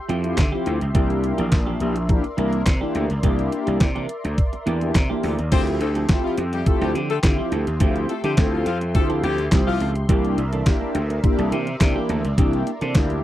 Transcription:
Already playing: G4 E5 G5 C6
0.09 F2 F3 C4 E4 G4, closed hi-hat
0.24 C4 E4 F4 G4, muted clean electric guitar stroke, closed hi-hat
0.37 D3, muted clean electric guitar stroke, kick, snare, clap, closed hi-hat
0.52 F3 C4 E4 F4 G4
0.66 D2 F3 C4 E4 G4, closed hi-hat
0.81 C#2, muted clean electric guitar stroke, closed hi-hat
0.94 C2 E3 A#3 D4 E4 G4 A#4 D5, kick, closed hi-hat
1.09 muted clean electric guitar stroke, closed hi-hat
1.23 muted clean electric guitar stroke, closed hi-hat
1.38 A#1 E3 A#3 D4 G4, closed hi-hat
1.52 A#1, kick, snare, clap, closed hi-hat
1.66 E3 A#3 D4 G4
1.80 A#1 A#3 D4 E4 G4, muted clean electric guitar stroke, closed hi-hat
1.95 muted clean electric guitar stroke, closed hi-hat
2.09 A#3 D4 E4 G4, kick, closed hi-hat
2.24 muted clean electric guitar stroke, closed hi-hat
2.37 C2 E3 A#3 D4 E4 G4 A#4, closed hi-hat
2.52 muted clean electric guitar stroke, closed hi-hat
2.66 C3, muted clean electric guitar stroke, kick, snare, clap, closed hi-hat
2.81 E3 A#3 D4 E4 G4
2.95 D2 E3 A#3 D4 G4, closed hi-hat
3.10 C#2, muted clean electric guitar stroke, closed hi-hat
3.23 C2 E3 A#3 D4 E4 G4, kick, closed hi-hat
3.38 muted clean electric guitar stroke, closed hi-hat
3.52 muted clean electric guitar stroke, closed hi-hat
3.67 C2 E3 A#3 D4 G4, closed hi-hat
3.80 C3, kick, snare, clap, closed hi-hat
3.95 E3 A#3 D4 G4, closed hi-hat
4.09 muted clean electric guitar stroke, closed hi-hat
4.24 D2, muted clean electric guitar stroke, closed hi-hat
4.38 kick, closed hi-hat
4.53 muted clean electric guitar stroke, closed hi-hat
4.66 E2 E3 A#3 D4 G4, closed hi-hat
4.81 A#3 D4 E4 G4, muted clean electric guitar stroke, closed hi-hat
4.95 C3, muted clean electric guitar stroke, kick, snare, clap, closed hi-hat
5.10 E3 A#3 D4 E4 G4
5.23 D2 E3 A#3 D4 G4, open hi-hat
5.38 D#2, muted clean electric guitar stroke, closed hi-hat
5.52 D2 F3 C4 E4 F4 G4 C5 E5 G5 C6, kick, closed hi-hat, crash
5.67 closed hi-hat
5.81 D2 A3 A4, muted clean electric guitar stroke, closed hi-hat
5.95 F3 C4 E4 A4, closed hi-hat
6.09 A3 C4 E4 F4 G4 A4, kick, snare, clap, closed hi-hat
6.24 F3 F4, muted clean electric guitar stroke
6.38 F2, closed hi-hat
6.53 G3 G4, muted clean electric guitar stroke, closed hi-hat
6.66 A3 C4 E4 F4 G4 A4, muted clean electric guitar stroke, kick, closed hi-hat
6.81 D2 F3 G3 C4 E4 G4 A4, closed hi-hat
6.95 D3 F3 C4 E4 G4, closed hi-hat
7.10 A3 A4, muted clean electric guitar stroke, closed hi-hat
7.23 D3 C4 E4 F4 G4, muted clean electric guitar stroke, kick, snare, clap, closed hi-hat
7.38 F3 C4 E4 G4
7.52 D2 F3 C4 E4 A4, closed hi-hat
7.67 D#2, muted clean electric guitar stroke, closed hi-hat
7.80 D2 F3 C4 E4 F4 G4, kick, closed hi-hat
7.96 closed hi-hat
8.09 A3 A4, muted clean electric guitar stroke, closed hi-hat
8.24 D3 F3 G3 C4 E4 G4 A4, closed hi-hat
8.37 D2 C4 E4 F4 A4, kick, snare, clap, closed hi-hat
8.52 F3 F4, muted clean electric guitar stroke
8.66 F2 F3 F4, closed hi-hat
8.81 muted clean electric guitar stroke, closed hi-hat
8.94 D2 A3 C4 E4 F4 G4 A4, muted clean electric guitar stroke, kick, closed hi-hat
9.10 F3 C4 E4 A4, closed hi-hat
9.23 D2 F3 G3 C4 E4 G4, closed hi-hat
9.38 muted clean electric guitar stroke, closed hi-hat
9.52 C2 C4 E4 F4 G4, muted clean electric guitar stroke, kick, snare, clap, closed hi-hat
9.67 F3 C4 E4 F4 G4
9.80 C#2 F3 C4 E4 A4, closed hi-hat
9.96 muted clean electric guitar stroke, closed hi-hat
10.09 C2 E3 A#3 D4 E4 G4 A#4 D5 E5, kick, closed hi-hat
10.25 closed hi-hat
10.37 C2, muted clean electric guitar stroke, closed hi-hat
10.53 E3 A#3 D4 A4, closed hi-hat
10.66 A#3 D4 E4 G4, muted clean electric guitar stroke, kick, snare, clap, closed hi-hat
10.81 muted clean electric guitar stroke
10.95 D2, closed hi-hat
11.10 muted clean electric guitar stroke, closed hi-hat
11.23 A#3 D4 E4 G4, muted clean electric guitar stroke, kick, closed hi-hat
11.39 C2 E3 A#3 D4 A4, closed hi-hat
11.52 C3 E3 A#3 D4 G4, closed hi-hat
11.67 muted clean electric guitar stroke, closed hi-hat
11.80 C3 A#3 D4 E4 G4, muted clean electric guitar stroke, kick, snare, clap, closed hi-hat
11.96 E3 A#3 D4 G4
12.09 D2 E3 A#3 D4 A4, closed hi-hat
12.24 C#2, muted clean electric guitar stroke, closed hi-hat
12.38 C2 E3 A#3 D4 E4 G4, kick, closed hi-hat
12.53 closed hi-hat
12.66 muted clean electric guitar stroke, closed hi-hat
12.81 C3 E3 A#3 D4 A4, closed hi-hat
12.95 D2 A#3 D4 E4 G4, kick, snare, clap, closed hi-hat
13.10 muted clean electric guitar stroke, closed hi-hat

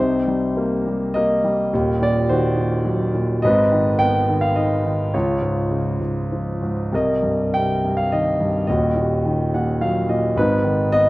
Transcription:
Already playing: C2
0.00 C3 D#4 C5
0.28 G3
0.57 A#3
0.86 G3
1.14 A#3 A#4 D#5
1.44 G3
1.73 D#1 D#2
2.01 A#2 D5
2.29 D#3 F#4 C5
2.57 A#2
2.85 F#3
3.15 A#2
3.42 G#1 G#2 B4 D#5
3.72 D#3
3.99 B3 G5
4.29 D#3
4.41 F5
4.56 D#4 D#5
4.85 D#3
5.14 C#2 F4 C#5
5.42 G#2
5.71 C#3
6.00 G#2
6.32 F3
6.62 G#2
6.93 C2 A#4 D#5
7.23 G2
7.54 C3 G5
7.85 G2
7.97 F5
8.12 D#3 D#5
8.41 G2
8.67 D#1 D#2 F#4 D#5
8.96 A#2
9.25 D#3
9.54 A#2 F#5
9.81 F#3 F5
10.09 A#2 D#5
10.36 G#1 G#2 D#4 B4
10.64 D#3
10.91 B3 D#5

